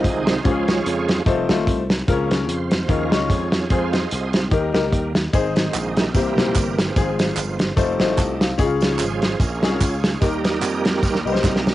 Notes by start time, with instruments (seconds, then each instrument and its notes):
Already playing: tonewheel organ D#3 G#3 C4 D#4, grand piano C4 D#4 F4
0.04 slap bass C2, tonewheel organ G#4, kick, closed hi-hat
0.26 tonewheel organ F4 G#4 C5, snare, closed hi-hat
0.44 slap bass C#2, grand piano C#3 C#4 F4 G4, tonewheel organ F3 G#3 C#4, kick, closed hi-hat
0.51 grand piano G#4
0.68 tonewheel organ F4 G#4 C#5, snare, closed hi-hat
0.86 slap bass F2, closed hi-hat
1.09 snare, closed hi-hat
1.25 slap bass F1, tonewheel organ G3 A3 D#4, grand piano A3 C4 D#4 F4 C5, kick, closed hi-hat
1.49 slap bass G1, grand piano A3 C4 D#4 F4 C5, snare, closed hi-hat
1.67 slap bass C2, kick, closed hi-hat
1.90 snare, closed hi-hat
2.07 slap bass C#2, grand piano C#3 C4 F4 A#4, tonewheel organ F3 A#3 C#4, kick, closed hi-hat
2.12 grand piano C#4
2.31 snare, closed hi-hat
2.49 slap bass F2, tonewheel organ F4 C5, closed hi-hat
2.71 snare, closed hi-hat
2.88 slap bass D#2, grand piano D#3 G#3 C#4 D#4 F4 A#4, tonewheel organ F3 G#3 C#4 F4 A#4, kick, closed hi-hat
3.11 slap bass C#2, grand piano G#3 C#4 D#4 F4 C#5, snare, closed hi-hat
3.30 slap bass F2, tonewheel organ C#4 F4 G#4, kick, closed hi-hat
3.52 snare, closed hi-hat
3.70 slap bass F2, tonewheel organ F3 G#3 C4 F4 G#4 C5, grand piano C4 F4 G#4, kick, closed hi-hat
3.85 tonewheel organ F5
3.92 tonewheel organ G#4 C5 D#5, snare, closed hi-hat
4.11 slap bass C2, closed hi-hat
4.33 snare, closed hi-hat
4.51 slap bass D#2, grand piano D#3 D#4 G4 A#4, tonewheel organ D#3 G3 A#3, kick, closed hi-hat
4.73 slap bass C#2, grand piano D#4 G4 A#4, snare, closed hi-hat
4.93 slap bass D#2, kick, closed hi-hat
5.15 snare, closed hi-hat
5.33 slap bass G#1, grand piano G#2 D#4 G#4 C5, tonewheel organ D#3 G#3 C4, kick, closed hi-hat, tambourine
5.56 snare, closed hi-hat, tambourine
5.74 slap bass A#1, tonewheel organ F5, clap, closed hi-hat, tambourine
5.90 tonewheel organ D#5
5.97 tonewheel organ G4 A#4 E5, snare, closed hi-hat, tambourine
6.14 slap bass C2, grand piano C3 A#3 C4 E4 G4 C5, tonewheel organ E3 G3 A#3, kick, closed hi-hat, tambourine
6.37 slap bass A#1, grand piano A#3 C4 E4 G4 C5, tonewheel organ C5, snare, closed hi-hat, tambourine
6.55 slap bass G1, tonewheel organ A#4, kick, clap, closed hi-hat, tambourine
6.79 tonewheel organ C4 F4 G#4, snare, closed hi-hat, tambourine
6.96 slap bass G#1, grand piano G#2 C4 F4 G#4, tonewheel organ F3 G#3 C4, kick, closed hi-hat, tambourine
7.19 snare, closed hi-hat, tambourine
7.37 slap bass G1, clap, closed hi-hat, tambourine
7.59 snare, closed hi-hat, tambourine
7.76 slap bass F1, tonewheel organ G3 A3 D#4, grand piano A3 C4 D#4 F4 C5, kick, closed hi-hat, tambourine
8.00 slap bass A1, grand piano G3 C4 D#4 F4 C5, snare, closed hi-hat, tambourine
8.05 grand piano A3
8.18 slap bass C2, grand piano D#5 A5, kick, clap, closed hi-hat, tambourine
8.41 grand piano C5 F5, snare, closed hi-hat, tambourine
8.58 slap bass C#2, grand piano C#3 C#4 D#4 G#4, kick, closed hi-hat, tambourine
8.63 grand piano F4
8.81 tonewheel organ F3 G#3 C#4, snare, closed hi-hat, tambourine
8.94 tonewheel organ C#5
8.99 slap bass G#1, tonewheel organ F4 G#4 C5, clap, closed hi-hat, tambourine
9.22 snare, closed hi-hat, tambourine
9.40 slap bass A#1, tonewheel organ C#4 F4 A#4, kick, closed hi-hat, tambourine
9.62 slap bass C2, grand piano C#4 D#4 G#4, snare, closed hi-hat, tambourine
9.68 grand piano F4
9.81 slap bass C#2, tonewheel organ C#4 F4 G#4, kick, clap, closed hi-hat, tambourine
10.04 snare, closed hi-hat, tambourine
10.20 slap bass D#2, grand piano D#3 D#4 G4 A#4, tonewheel organ G3 A#3 D#4 G4 A#4, kick, closed hi-hat, tambourine
10.43 tonewheel organ G4 A#4 D#5, snare, closed hi-hat, tambourine
10.62 slap bass F2, clap, closed hi-hat, tambourine
10.85 snare, closed hi-hat, tambourine
11.03 slap bass D#2, kick, snare, tambourine
11.15 snare
11.25 slap bass C#2, grand piano D#4 G4 B4, tambourine
11.32 grand piano C5, snare
11.44 slap bass C2, kick, snare, clap, tambourine
11.56 snare
11.67 snare, tambourine